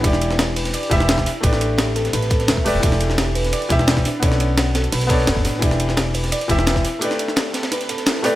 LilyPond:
<<
  \new Staff \with { instrumentName = "Felt piano" } { \time 4/4 \key e \dorian \tempo 4 = 172 <e e' g' d''>2~ <e e' g' d''>8 <e e' g' e''>4 r8 | <a g' b' d''>2~ <a g' b' d''>8 r4 <a g' b' d''>8 | <e e' g' d''>2~ <e e' g' d''>8 <e e' g' e''>4 r8 | <b a' cis'' d''>2~ <b a' cis'' d''>8 <b a' cis'' d''>4. |
<e e' g' d''>2~ <e e' g' d''>8 <e e' g' e''>4 r8 | <a g' b' d''>2~ <a g' b' d''>8 r4 <a g' b' d''>8 | }
  \new Staff \with { instrumentName = "Synth pluck" } { \time 4/4 \key e \dorian d'8 d'8 g'8 b'8 d''8 e'8 d'8 e'8 | d'8 d'8 g'8 a'8 b'8 a'8 e''8 a'8 | d'8 d'8 g'8 b'8 d''8 e'8 b'8 d'8 | cis'8 cis'8 fis'8 a'8 b'8 d'8 a'8 d'8 |
d'8 d'8 g'8 b'8 d''8 e'8 b'8 e'8 | d'8 d'8 g'8 a'8 b'8 a'8 e'8 g'8 | }
  \new Staff \with { instrumentName = "Upright bass" } { \clef bass \time 4/4 \key e \dorian e,,2 r8 e,,4 r8 | a,,2 a,,4 e,,16 r16 e,,16 e,,16 | e,,2 r8 e,,4 r8 | b,,2 b,,4 fis,,16 fis,,16 a,,8 |
e,,2 r8 e,,4 r8 | r1 | }
  \new DrumStaff \with { instrumentName = "Drums" } \drummode { \time 4/4 <hh bd cymr>16 sn16 <hh cymr>16 sn16 <hh cymr sn>8 <hh hho cymr>16 <hh sn>16 <hh cymr>16 hh16 <hh bd cymr sn>16 sn16 <hh cymr sn>16 <bd sn>16 <hho cymr sn>8 | <hh bd cymr>16 sn16 <hh cymr>8 <hh cymr sn>8 <hh cymr sn>16 <hh sn>16 <hh cymr sn>16 <hh sn>16 <hh bd cymr sn>16 <hh sn>16 <hh cymr sn>16 bd16 <hho cymr>16 sn16 | <hh bd cymr>16 sn16 <hh cymr>16 sn16 <hh cymr sn>8 <hh hho cymr>16 <hh sn>16 <hh cymr>16 hh16 <hh bd cymr sn>16 sn16 <hh cymr sn>16 <bd sn>16 <hho cymr sn>8 | <hh bd cymr>16 sn16 <hh cymr>8 <hh cymr sn>8 <hh cymr sn>16 hh16 <hh hho cymr sn>16 <hh sn>16 <hh bd cymr sn>16 sn16 <hh cymr sn>16 <bd sn>16 <hho cymr sn>16 sn16 |
<hh bd cymr>16 sn16 <hh cymr>16 sn16 <hh cymr sn>8 <hh hho cymr>16 <hh sn>16 <hh cymr>16 hh16 <hh bd cymr sn>16 sn16 <hh cymr sn>16 <bd sn>16 <hho cymr sn>8 | <hh cymr>16 sn16 <hh cymr>16 sn16 <hh cymr sn>8 <hh cymr sn>16 <hh cymr sn>16 <hh cymr sn>16 <hh sn>16 <hh cymr sn>16 <hh sn>16 <hh cymr sn>16 sn16 <hho cymr sn>8 | }
>>